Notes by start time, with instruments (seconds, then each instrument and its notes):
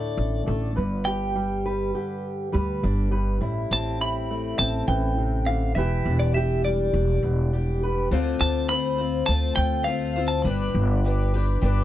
Already playing: steel-string acoustic guitar A2 D3 A3 A4, clean electric guitar D5
0.17 upright bass A1
0.46 upright bass A1, steel-string acoustic guitar A3 A4
0.76 upright bass G1, steel-string acoustic guitar G2 B4
1.05 steel-string acoustic guitar G4, clean electric guitar G5
1.36 steel-string acoustic guitar G3
1.66 steel-string acoustic guitar B4
1.94 steel-string acoustic guitar D3 G4
2.52 upright bass D2, steel-string acoustic guitar G3 B4
2.83 upright bass G1, steel-string acoustic guitar D4
3.11 steel-string acoustic guitar G2 B4
3.41 upright bass A1, steel-string acoustic guitar A2 E4
3.71 upright bass A1, steel-string acoustic guitar C4, clean electric guitar A5
4.00 steel-string acoustic guitar E4, clean electric guitar B5
4.30 steel-string acoustic guitar A3
4.59 upright bass A1, steel-string acoustic guitar C4, clean electric guitar A5
4.88 upright bass A1, steel-string acoustic guitar E3, clean electric guitar G5
5.18 steel-string acoustic guitar C3
5.47 steel-string acoustic guitar D3, clean electric guitar F5
5.75 upright bass E1, steel-string acoustic guitar E3 G4, clean electric guitar E5
6.05 upright bass E1, steel-string acoustic guitar D4
6.20 clean electric guitar D5
6.34 steel-string acoustic guitar G4, clean electric guitar E5
6.65 steel-string acoustic guitar G3, clean electric guitar D5
6.93 upright bass E1, steel-string acoustic guitar D4
7.23 upright bass E1, steel-string acoustic guitar B2
7.53 steel-string acoustic guitar G4
7.83 steel-string acoustic guitar B4
8.11 upright bass D2, twelve-string acoustic guitar D3 A3 C4 F4 C5
8.41 upright bass D2, clean electric guitar A5
8.69 twelve-string acoustic guitar A3 C4 F4 C5, clean electric guitar B5
8.98 twelve-string acoustic guitar C4 F4 C5
9.26 upright bass D2, twelve-string acoustic guitar A3 C4 F4 C5, clean electric guitar A5
9.56 upright bass D2, clean electric guitar G5
9.84 twelve-string acoustic guitar A3 C4 F4, clean electric guitar F5
9.88 twelve-string acoustic guitar C5
10.16 twelve-string acoustic guitar C4 F4 C5
10.28 clean electric guitar A5
10.42 upright bass G1, twelve-string acoustic guitar G3 D4, clean electric guitar B5
10.46 twelve-string acoustic guitar G4 B4
10.75 upright bass G1
11.04 twelve-string acoustic guitar G3 D4 G4 B4
11.34 twelve-string acoustic guitar D4 G4 B4
11.62 upright bass G1, twelve-string acoustic guitar G3 D4 G4 B4